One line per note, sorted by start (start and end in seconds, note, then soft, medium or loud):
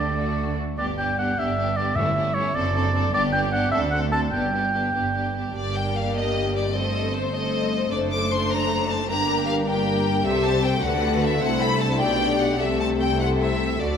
0.00 0.56 D2 soft
0.00 0.56 D3 soft
0.00 0.16 A3 soft
0.00 0.16 D4 soft
0.00 0.18 G4 soft
0.00 0.56 D5 medium
0.17 0.57 A3 soft
0.17 0.57 D4 soft
0.17 0.57 F#4 soft
0.77 1.30 G1 soft
0.77 1.31 G2 soft
0.77 0.96 B3 soft
0.77 0.97 D4 soft
0.77 0.97 G4 soft
0.77 0.87 D5 medium
0.98 1.16 B3 soft
0.98 1.17 D4 soft
0.98 1.17 G4 soft
0.98 1.18 G5 medium
1.17 1.36 B3 soft
1.17 1.36 D4 soft
1.17 1.36 G4 soft
1.17 1.40 F#5 soft
1.37 1.90 G1 soft
1.37 1.89 G2 soft
1.37 1.56 B3 soft
1.37 1.56 D4 soft
1.37 1.56 G4 soft
1.37 1.78 E5 medium
1.57 1.76 B3 soft
1.57 1.76 D4 soft
1.57 1.76 G4 soft
1.76 1.96 B3 soft
1.76 1.96 D4 soft
1.76 1.96 G4 soft
1.76 1.97 D5 medium
1.96 2.48 G1 soft
1.96 2.51 G2 medium
1.96 2.48 G2 soft
1.96 2.14 A3 soft
1.96 2.14 C#4 soft
1.96 2.15 E4 soft
1.96 2.36 E5 medium
2.15 2.33 A3 soft
2.15 2.35 C#4 soft
2.15 2.35 E4 soft
2.34 2.54 A3 soft
2.34 2.55 C#4 soft
2.34 2.55 E4 soft
2.34 2.56 C#5 medium
2.55 3.07 F#1 medium
2.55 3.07 F#2 medium
2.55 2.72 C4 soft
2.55 2.74 D4 soft
2.55 2.74 A4 soft
2.55 3.14 D5 medium
2.74 2.92 C4 soft
2.74 2.93 D4 soft
2.74 2.93 A4 soft
2.93 3.13 C4 soft
2.93 3.12 D4 soft
2.93 3.13 A4 soft
3.13 3.66 G1 medium
3.13 3.65 G2 medium
3.13 3.32 B3 medium
3.13 3.32 D4 medium
3.13 3.33 G4 medium
3.13 3.23 D5 medium
3.32 3.50 B3 soft
3.32 3.51 D4 soft
3.32 3.53 G4 soft
3.32 3.41 G5 medium
3.52 3.72 B3 soft
3.52 3.71 D4 soft
3.52 3.73 G4 soft
3.52 3.71 F#5 medium
3.71 4.26 D2 medium
3.71 3.90 C4 soft
3.71 3.91 D4 soft
3.71 3.92 A4 soft
3.71 3.80 E5 medium
3.91 4.11 C4 soft
3.91 4.10 D4 soft
3.91 4.11 A4 soft
3.91 4.00 F#5 medium
4.12 4.32 C4 soft
4.12 4.31 D4 soft
4.12 4.32 A4 soft
4.12 4.21 A5 medium
4.32 4.87 G1 soft
4.32 4.87 G2 soft
4.32 4.52 B3 soft
4.32 4.52 D4 soft
4.32 4.53 G4 soft
4.32 5.32 G5 medium
4.53 4.72 B3 soft
4.53 4.72 D4 soft
4.53 4.73 G4 soft
4.73 4.92 B3 soft
4.73 4.93 D4 soft
4.73 4.93 G4 soft
4.94 5.48 G1 soft
4.94 5.48 G2 soft
4.94 5.13 B3 soft
4.94 5.14 D4 soft
4.94 5.14 G4 soft
5.14 5.33 B3 soft
5.14 5.34 D4 soft
5.14 5.34 G4 soft
5.34 5.54 B3 soft
5.34 5.54 D4 soft
5.34 5.55 G4 soft
5.55 7.88 G1 soft
5.55 7.88 G2 soft
5.55 6.70 G3 soft
5.55 6.71 A#3 soft
5.55 6.71 D4 soft
5.55 6.70 G4 soft
5.55 6.71 G4 soft
5.55 5.74 D5 medium
5.75 5.95 G5 medium
5.96 6.16 F5 medium
6.16 6.55 D#5 medium
6.56 6.75 D5 soft
6.74 7.32 A3 soft
6.74 9.04 A3 soft
6.74 7.32 C4 soft
6.74 7.32 A4 soft
6.74 7.32 C5 soft
6.74 9.05 C5 soft
6.74 7.14 D#5 medium
7.14 7.34 C5 medium
7.33 7.90 A3 soft
7.33 7.91 C4 soft
7.33 7.90 A4 soft
7.33 7.90 C5 soft
7.33 7.92 D#5 medium
7.91 9.06 F#1 soft
7.91 9.06 F#2 soft
7.91 9.06 A3 soft
7.91 9.07 D4 soft
7.91 9.06 A4 soft
7.91 9.05 C5 soft
7.91 8.00 D5 medium
8.11 8.30 D6 medium
8.31 8.50 C6 medium
8.50 8.89 A#5 medium
8.89 9.08 A5 medium
9.08 10.25 G1 soft
9.08 10.25 G2 soft
9.08 10.79 G3 medium
9.08 9.65 A#3 medium
9.08 9.65 D4 medium
9.08 9.65 G4 soft
9.08 9.65 A#4 soft
9.08 10.21 A#4 medium
9.08 9.46 A#5 medium
9.47 9.54 F5 medium
9.66 10.23 A#3 soft
9.66 10.23 D4 soft
9.66 10.24 G4 soft
9.66 10.23 A#4 soft
9.66 10.24 G5 medium
10.24 10.79 C2 soft
10.24 10.79 C3 medium
10.24 10.79 C4 medium
10.24 10.78 G4 medium
10.24 11.97 A4 medium
10.24 10.79 A4 soft
10.24 10.79 C5 soft
10.24 10.44 E5 medium
10.44 10.63 A5 medium
10.64 10.83 G5 medium
10.82 11.42 D2 medium
10.82 11.42 D3 medium
10.82 12.57 A3 medium
10.82 11.38 A3 medium
10.82 11.40 F#4 soft
10.82 11.41 A4 medium
10.82 11.42 B4 medium
10.82 11.22 F#5 medium
11.22 11.42 E5 medium
11.41 12.00 C2 medium
11.41 11.99 C3 medium
11.41 12.56 D4 medium
11.41 12.01 E4 medium
11.41 12.00 A4 soft
11.41 12.00 C5 medium
11.41 11.61 F#5 medium
11.61 11.81 B5 medium
11.80 12.00 A5 medium
12.00 12.60 B1 medium
12.00 12.60 B2 soft
12.00 12.60 D4 soft
12.00 12.60 G4 medium
12.00 12.56 G4 medium
12.00 12.60 D5 medium
12.00 12.39 G5 medium
12.40 12.60 F#5 medium
12.60 13.81 C2 medium
12.60 13.81 C3 soft
12.60 13.19 A3 medium
12.60 13.78 A3 medium
12.60 13.20 C4 medium
12.60 13.77 G4 medium
12.60 13.19 A4 soft
12.60 12.80 E5 medium
12.80 12.88 A5 medium
13.00 13.20 G5 medium
13.20 13.80 A3 soft
13.20 13.81 E4 soft
13.20 13.80 A4 soft
13.20 13.82 C5 soft
13.20 13.28 F#5 medium
13.41 13.81 E5 medium
13.81 13.97 D2 soft
13.81 13.97 D3 soft
13.81 13.97 F#3 soft
13.81 13.97 A3 soft
13.81 13.97 F#4 soft
13.81 13.97 A4 soft
13.81 13.97 D5 medium